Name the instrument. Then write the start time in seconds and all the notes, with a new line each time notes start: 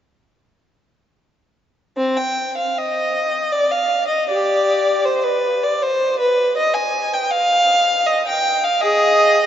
violin
1.97 C4
2.17 G5
2.57 F5
2.78 D#5
3.52 D5
3.71 F5
4.07 D#5
4.29 G4 D5
5.05 C5
5.23 B4
5.63 D5
5.82 C5
6.19 B4
6.57 D#5
6.74 G#5
7.13 G5
7.31 F5
8.06 D#5
8.27 G5
8.63 F5
8.81 G#4 D#5